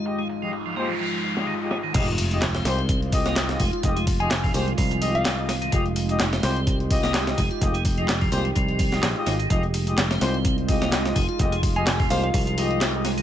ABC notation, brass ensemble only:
X:1
M:4/4
L:1/16
Q:"Swing 16ths" 1/4=127
K:Fm
V:1 name="Brass ensemble"
[A,FGe] z2 [A,FGe] z2 [A,FGc] z4 [A,FGe]2 [A,FGe]2 z | [A,FGe] z2 [A,FGe] z2 [A,FGc] z3 [A,FGe]3 [A,FGe] z2 | [A,FGe] z2 [A,FGe] z2 [A,FGc] z3 [A,FGe]3 [A,FGe] z2 | [A,FGe] z2 [A,FGe] z2 [A,FGc] z3 [A,FGe]3 [A,FGe] z2 |
[A,FGe] z2 [A,FGe] z2 [A,FGc] z4 [A,FGe]2 [A,FGe]2 z | [A,FGe] z2 [A,FGe] z2 [A,FGc] z3 [A,FGe]3 [A,FGe] z2 | [A,FGe] z2 [A,FGe] z2 [A,FGc] z3 [A,FGe]3 [A,FGe] z2 |]